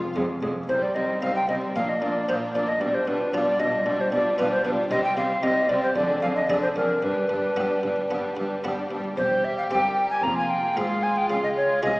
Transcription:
Already playing: harpsichord F2 G#3 C4 F4, recorder F4, violin section F4 F5
0.16 double bass section F1, cello section F2, harpsichord F2, viola section G#3
0.42 double bass section F1, cello section F2, harpsichord F2, viola section G#3
0.69 double bass section C2, cello section C2, harpsichord C2, viola section G3, violin section C4 D#4, recorder C5
0.82 recorder D5
0.95 cello section C2, double bass section C2, harpsichord C2, viola section G3, violin section C4 D#4, recorder D#5
1.22 cello section C2, double bass section C2, harpsichord C2 C4 D#4, viola section G3, violin section C4 D#4, recorder F5
1.36 recorder G5
1.48 cello section C2, double bass section C2, harpsichord C2, viola section G3, violin section C4 D#4, recorder D#5
1.75 double bass section A#1, cello section A#2, harpsichord A#2, viola section A#3, violin section D4 F4, recorder F5
1.89 recorder D#5
2.01 double bass section A#1, cello section A#2, harpsichord A#2, viola section A#3, violin section D4 F4, recorder D5
2.28 double bass section A#1, cello section A#2, harpsichord A#2 D4 F4, viola section A#3, violin section D4 F4, recorder C5
2.54 double bass section A#1, cello section A#2, harpsichord A#2, viola section A#3, violin section D4 F4, recorder D5
2.68 recorder D#5
2.80 double bass section B1, cello section B2, harpsichord B2, viola section G3, violin section D4 F4, recorder D5
2.95 recorder C5
3.07 double bass section B1, cello section B2, harpsichord B2, viola section G3, violin section D4 F4, recorder B4
3.33 double bass section B1, cello section B2, harpsichord B2 D4 F4, viola section G3, violin section D4 F4, recorder D5
3.60 double bass section B1, cello section B2, harpsichord B2, viola section G3, violin section D4 F4, recorder D#5
3.85 double bass section B1, cello section B2, harpsichord B2, viola section G3, violin section D4 F4, recorder D5
4.01 recorder C5
4.12 double bass section B1, cello section B2, harpsichord B2, viola section G3, violin section D4 F4, recorder D5
4.37 double bass section B1, cello section B2, harpsichord B2 D4 F4, viola section G3, violin section D4 F4, recorder B4
4.52 recorder C5
4.64 double bass section B1, cello section B2, harpsichord B2, viola section G3, violin section D4 F4, recorder B4
4.90 double bass section C2, cello section C3, harpsichord C3, viola section G3, violin section C4 G4, recorder D#5
5.04 recorder G5
5.17 double bass section C2, cello section C3, harpsichord C3, viola section G3, violin section C4 G4, recorder F5
5.43 double bass section C2, cello section C3, harpsichord C3 C4 D#4, viola section G3, violin section C4 G4, recorder D#5
5.69 double bass section C2, cello section C3, harpsichord C3, viola section G3, violin section C4 G4, recorder D5
5.83 recorder C5
5.96 double bass section F1, harpsichord F2, cello section F2, viola section D3, violin section D4 G#4, recorder D5
6.22 double bass section F1, harpsichord F2, cello section F2, viola section D3, violin section D4 G#4, recorder F5
6.35 recorder D#5
6.49 double bass section F1, cello section F2, harpsichord F2 D4 G#4, viola section D3, violin section D4 G#4, recorder D5
6.62 recorder C5
6.76 double bass section F1, cello section F2, harpsichord F2, viola section D3, violin section D4 G#4, recorder A#4
7.02 double bass section G1, harpsichord G2, cello section G2, viola section G3, violin section D4 G4, recorder B4
7.29 double bass section G1, cello section G2, harpsichord G2, viola section G3, violin section D4 G4
7.56 double bass section G1, harpsichord G2 B3 D4 G4, cello section G2, viola section G3, violin section D4 G4
7.83 double bass section G1, harpsichord G2, cello section G2, viola section G3, violin section D4 G4
8.10 double bass section G1, cello section G2, harpsichord G2 B3, viola section G3, violin section D4 G4
8.37 double bass section G1, harpsichord G2, cello section G2, viola section G3, violin section D4 G4
8.64 double bass section G1, cello section G2, harpsichord G2 B3 D4 G4, viola section G3, violin section D4 G4
8.91 double bass section G1, harpsichord G2, cello section G2, viola section G3, violin section D4 G4
9.17 double bass section E1, harpsichord E2, cello section E2, viola section G3, violin section G4, recorder C5
9.44 recorder E5
9.58 recorder F5
9.71 double bass section G1, cello section G2, harpsichord G2 C4 G4, violin section A#4, recorder G5
10.10 recorder G#5
10.23 double bass section F1, cello section F2, harpsichord F2, viola section A#3, violin section F4 G#4, recorder A#5
10.37 recorder G#5
10.50 recorder G5
10.76 double bass section G#1, cello section G#2, harpsichord G#2 F4 G#4, viola section G#3, violin section F4, recorder F5
11.03 recorder G#5
11.17 recorder G5
11.29 double bass section C#2, harpsichord C#3, cello section C#3, violin section G#4, recorder F5
11.44 recorder D#5
11.57 recorder C#5
11.82 double bass section C2, cello section C3, harpsichord C3 F4 G#4, viola section G#3, violin section G#4, recorder D#5

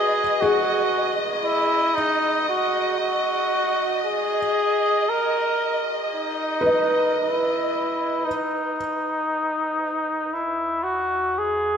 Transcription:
Already playing: flugelhorn G#4, felt piano B4 C#5, violin section D#5
0.41 flugelhorn F#4, felt piano G#4
1.44 flugelhorn E4
1.95 flugelhorn D#4
2.49 flugelhorn F#4
3.01 flugelhorn F#4
4.05 flugelhorn G#4
5.09 flugelhorn A#4
6.15 flugelhorn D#4
6.61 felt piano B4
6.66 felt piano D#5
7.21 flugelhorn E4
8.25 synth drone E2, flugelhorn D#4
10.34 flugelhorn E4
10.83 flugelhorn F#4
11.38 flugelhorn G#4

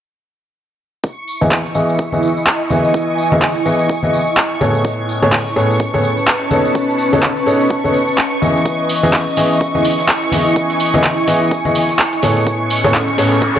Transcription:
1.04 ambient pad E4, string machine C#6, kick, tambourine
1.28 tambourine
1.41 grand piano E3 B3 E4 G#4 D#5, ambient pad D#5, tambourine, high conga
1.51 kick, clap, tambourine
1.65 tambourine
1.75 grand piano E3 B3 E4 G#4 D#5, tambourine
1.82 ambient pad G#5
1.89 tambourine
1.98 kick, tambourine
2.12 grand piano E3 B3 E4 G#4 D#5, tambourine, high conga
2.23 tambourine
2.37 tambourine
2.47 kick, clap, tambourine
2.70 grand piano E3 B3 E4 G#4 D#5, tambourine, high conga
2.84 tambourine
2.94 kick, tambourine
3.18 tambourine
3.32 grand piano E3 B3 E4 G#4 D#5, tambourine, high conga
3.42 kick, clap, tambourine
3.55 tambourine
3.66 grand piano E3 B3 E4 G#4 D#5, tambourine
3.79 tambourine
3.89 kick, tambourine
4.03 grand piano E3 B3 E4 G#4 D#5, tambourine, high conga
4.13 tambourine
4.27 tambourine
4.37 kick, clap, tambourine
4.61 grand piano A2 B3 G#4 A4 C#5, tambourine, high conga
4.75 tambourine
4.85 ambient pad C#4, kick, tambourine
5.09 tambourine
5.16 ambient pad B4
5.22 grand piano A2 B3 G#4 A4 C#5, tambourine, high conga
5.32 ambient pad A5, kick, clap, tambourine
5.46 tambourine
5.56 grand piano A2 B3 G#4 A4 C#5, tambourine
5.70 tambourine
5.80 kick, tambourine
5.94 grand piano A2 B3 G#4 A4 C#5, tambourine, high conga
6.04 tambourine
6.17 tambourine
6.27 kick, clap, tambourine
6.51 grand piano B2 B3 D#4 A4 C#5, tambourine, high conga
6.65 tambourine
6.75 kick, tambourine
6.89 tambourine
6.98 tambourine
7.13 grand piano B2 B3 D#4 A4 C#5, tambourine, high conga
7.23 kick, clap, tambourine
7.37 ambient pad D#5, tambourine
7.47 grand piano B2 B3 D#4 A4 C#5, tambourine
7.61 tambourine
7.70 kick, tambourine
7.84 grand piano B2 B3 D#4 A4 C#5, tambourine, high conga
7.94 tambourine
8.08 tambourine
8.18 kick, clap, tambourine
8.42 grand piano E3 B3 E4 G#4 D#5, tambourine, high conga
8.55 tambourine
8.66 ambient pad E4, kick, tambourine
8.89 open hi-hat, tambourine
9.03 grand piano E3 B3 E4 G#4 D#5, snare, tambourine, high conga
9.13 kick, snare, clap, tambourine
9.28 tambourine
9.36 grand piano E3 B3 E4 G#4 D#5, open hi-hat, tambourine
9.51 ambient pad G#5, tambourine
9.61 kick, tambourine
9.75 grand piano E3 B3 E4 G#4 D#5, tambourine, high conga
9.84 open hi-hat, tambourine
9.98 snare, tambourine
10.08 kick, snare, clap, tambourine
10.22 snare
10.32 grand piano E3 B3 E4 G#4 D#5, open hi-hat, tambourine, high conga
10.47 tambourine
10.56 kick, tambourine
10.70 snare
10.80 snare, open hi-hat, tambourine
10.93 grand piano E3 B3 E4 G#4 D#5, snare, tambourine, high conga
11.04 kick, snare, clap, tambourine
11.18 tambourine
11.27 grand piano E3 B3 E4 G#4 D#5, open hi-hat, tambourine
11.42 tambourine
11.51 kick, tambourine
11.65 grand piano E3 B3 E4 G#4 D#5, closed hi-hat, tambourine, high conga
11.75 open hi-hat, tambourine
11.89 snare, tambourine
11.99 kick, snare, clap, tambourine
12.13 snare
12.22 grand piano A2 B3 G#4 A4 C#5, open hi-hat, tambourine, high conga
12.36 snare, tambourine
12.47 ambient pad C#4, kick, tambourine, riser
12.63 ambient pad A4
12.70 open hi-hat, tambourine
12.84 grand piano A2 B3 G#4 A4 C#5, ambient pad B5, snare, tambourine, high conga
12.94 kick, snare, clap, tambourine
13.08 tambourine
13.18 grand piano A2 B3 G#4 A4 C#5, open hi-hat, tambourine
13.31 tambourine
13.42 kick, tambourine
13.56 grand piano A2 B3 G#4 A4 C#5

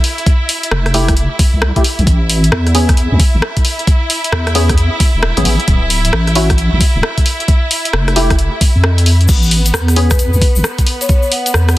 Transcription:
Already playing: violin section E4 E5
0.04 open hi-hat
0.18 closed hi-hat
0.26 kick, closed hi-hat
0.49 open hi-hat
0.63 closed hi-hat
0.71 wobble bass F1, cross-stick
0.86 cross-stick, closed hi-hat
0.94 synth stab A3 E4 G4, open hi-hat
1.08 kick, cross-stick, closed hi-hat
1.17 closed hi-hat
1.39 kick, open hi-hat
1.53 wobble bass C2
1.62 cross-stick
1.76 synth stab A3 E4 G4, kick, closed hi-hat
1.84 open hi-hat
1.99 wobble bass C2, closed hi-hat
2.07 wobble bass A1, violin section E4 E5, kick, closed hi-hat
2.30 open hi-hat
2.44 closed hi-hat
2.52 cross-stick
2.67 cross-stick, closed hi-hat
2.75 synth stab B3 C#4 G#4, open hi-hat
2.89 kick, cross-stick, closed hi-hat
2.97 closed hi-hat
3.12 wobble bass E2
3.20 kick, open hi-hat
3.34 wobble bass A1
3.42 cross-stick
3.57 kick, closed hi-hat
3.65 open hi-hat
3.79 closed hi-hat
3.87 kick, closed hi-hat
4.10 open hi-hat
4.24 closed hi-hat
4.32 wobble bass E2, cross-stick
4.47 cross-stick, closed hi-hat
4.55 synth stab B3 C#4 G#4, open hi-hat
4.69 kick, cross-stick, closed hi-hat
4.78 closed hi-hat
5.00 kick, open hi-hat
5.15 wobble bass E1
5.23 cross-stick
5.37 wobble bass A1, synth stab B3 C#4 G#4, closed hi-hat
5.45 wobble bass A1, open hi-hat
5.60 closed hi-hat
5.68 wobble bass D1, kick, closed hi-hat
5.90 open hi-hat
6.05 closed hi-hat
6.13 wobble bass A1, cross-stick
6.27 cross-stick, closed hi-hat
6.35 synth stab C#4 E4 F#4, open hi-hat
6.50 kick, cross-stick, closed hi-hat
6.58 closed hi-hat
6.73 wobble bass A1
6.81 kick, open hi-hat
6.95 wobble bass D1
7.03 cross-stick
7.18 kick, closed hi-hat
7.26 open hi-hat
7.40 closed hi-hat
7.48 kick, closed hi-hat
7.71 open hi-hat
7.85 closed hi-hat
7.93 wobble bass F1, cross-stick
8.08 cross-stick, closed hi-hat
8.16 synth stab A3 E4 G4, open hi-hat
8.30 kick, cross-stick, closed hi-hat
8.39 closed hi-hat
8.61 kick, open hi-hat
8.75 wobble bass F2
8.84 cross-stick
8.98 closed hi-hat
9.06 open hi-hat
9.21 closed hi-hat
9.28 wobble bass A1, violin section B3 B4, kick, closed hi-hat, crash, shaker
9.42 shaker
9.51 open hi-hat
9.66 closed hi-hat, shaker
9.74 cross-stick, shaker
9.88 cross-stick, closed hi-hat, shaker
9.96 synth stab B3 C#4 G#4, vibraphone B4, open hi-hat
10.10 kick, cross-stick, closed hi-hat, shaker
10.19 closed hi-hat, shaker
10.33 wobble bass E2, shaker
10.42 kick, open hi-hat
10.56 wobble bass A1, shaker
10.64 cross-stick, shaker
10.78 kick, closed hi-hat, shaker
10.87 open hi-hat
11.01 vibraphone C#5, closed hi-hat, shaker
11.09 vibraphone C#5, kick, closed hi-hat, shaker
11.23 shaker
11.32 vibraphone F#5, open hi-hat
11.46 closed hi-hat, shaker
11.54 wobble bass E2, cross-stick, shaker
11.69 cross-stick, closed hi-hat, shaker

